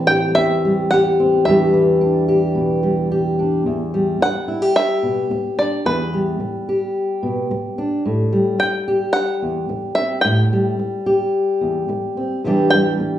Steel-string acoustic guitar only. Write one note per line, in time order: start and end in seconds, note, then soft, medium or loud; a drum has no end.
0.00 0.35 A2 medium
0.00 1.47 E3 medium
0.00 0.65 G3 soft
0.00 1.19 C4 medium
0.10 0.92 G4 medium
0.36 1.45 E2 medium
0.65 1.48 G3 soft
0.93 1.49 G4 medium
1.20 1.43 C4 soft
1.46 3.65 E2 medium
1.46 1.72 E3 medium
1.46 2.82 G3 medium
1.46 2.00 D4 medium
1.46 2.27 G4 medium
1.74 3.63 E3 medium
2.01 3.38 D4 soft
2.28 3.10 G4 medium
2.55 3.62 B2 soft
2.83 3.93 G3 soft
3.11 3.63 G4 medium
3.39 3.63 D4 soft
3.66 4.20 E2 medium
3.94 6.13 G3 medium
4.20 muted steel-string acoustic guitar stroke soft
4.48 4.62 E4 medium
4.62 5.86 G4 soft
5.03 5.30 B2 soft
5.31 muted steel-string acoustic guitar stroke medium
5.58 5.82 D4 soft
5.85 6.39 E2 medium
6.14 8.32 G3 soft
6.40 muted steel-string acoustic guitar stroke medium
6.69 8.09 G4 medium
7.23 7.50 B2 medium
7.51 muted steel-string acoustic guitar stroke medium
7.78 8.02 D4 soft
8.06 8.57 A2 medium
8.33 10.52 G3 medium
8.58 muted steel-string acoustic guitar stroke medium
8.88 10.28 G4 medium
9.42 9.68 E2 soft
9.69 muted steel-string acoustic guitar stroke medium
9.97 10.21 C4 soft
10.25 10.78 A2 medium
10.53 12.46 G3 soft
10.79 muted steel-string acoustic guitar stroke medium
11.06 12.47 G4 medium
11.61 11.87 E2 soft
11.88 muted steel-string acoustic guitar stroke medium
12.17 12.41 C4 soft
12.44 12.99 E2 medium
12.44 13.19 E3 medium
12.44 12.73 G3 medium
12.44 13.19 D4 medium
12.44 13.19 G4 medium
12.73 13.19 G3 medium
13.00 muted steel-string acoustic guitar stroke medium